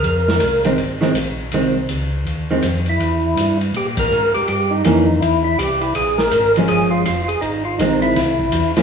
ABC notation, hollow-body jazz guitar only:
X:1
M:4/4
L:1/8
Q:"Swing" 1/4=163
K:Fm
V:1 name="Hollow-body jazz guitar" clef=bass
z3 [E,A,C] z [E,A,C] z2 | [E,A,C] z4 [E,A,C] z2 | z8 | z2 [=E,B,D] z4 z |
z3 [F,A,D]3 z2 | z2 [E,A,C]2 z3 [F,B,D] |]